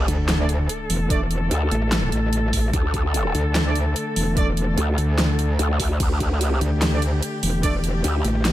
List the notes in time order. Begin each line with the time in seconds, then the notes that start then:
Already playing: D3 A3 A4, sub drop
0.08 D2, closed hi-hat
0.29 snare, clap, closed hi-hat
0.40 A3 D4 D5
0.49 closed hi-hat
0.69 closed hi-hat
0.90 E1, open hi-hat
1.10 A3 D4 D5, kick, closed hi-hat
1.31 closed hi-hat
1.51 D2, closed hi-hat
1.71 A1, closed hi-hat
1.92 snare, clap, closed hi-hat
2.12 A1, closed hi-hat
2.33 closed hi-hat
2.53 kick, open hi-hat
2.73 D2, kick, closed hi-hat
2.94 kick, closed hi-hat
3.14 closed hi-hat
3.35 D2, closed hi-hat
3.55 snare, clap, closed hi-hat
3.66 A3 D4 D5
3.75 closed hi-hat
3.96 closed hi-hat
4.16 E1, open hi-hat
4.37 A3 D4 D5, kick, closed hi-hat
4.57 closed hi-hat
4.78 D2, closed hi-hat
4.98 D2, closed hi-hat
5.18 snare, clap, closed hi-hat
5.39 closed hi-hat
5.59 D2, closed hi-hat
5.80 kick, open hi-hat
6.00 D2 G4, kick, closed hi-hat, ride
6.20 kick, closed hi-hat
6.41 C#2, closed hi-hat, ride
6.61 D2, closed hi-hat
6.82 snare, clap, closed hi-hat, ride
6.93 A3 D4 D5
7.02 closed hi-hat
7.23 closed hi-hat, ride
7.43 E1, open hi-hat
7.63 A3 D4 D5, kick, closed hi-hat, ride
7.84 closed hi-hat
8.04 D2, closed hi-hat, ride
8.24 A1, closed hi-hat
8.45 snare, clap, closed hi-hat, ride